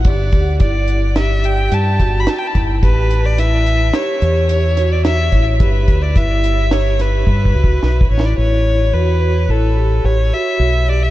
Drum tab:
HH |x--x--x--x--x--x--x--x--x--x--|x--x--x--x--x--x--x--x--x--x--|x--x--x--x--x--x--------------|------------------------------|
SD |------o-----o-----------o-----|------o-----o--------o--o-----|------------o--o--------o---o-|------------------------------|
BD |o--o--o--------------o-----o--|o--------------------------o--|o--o--o-----------o-o-o---o---|------------------------------|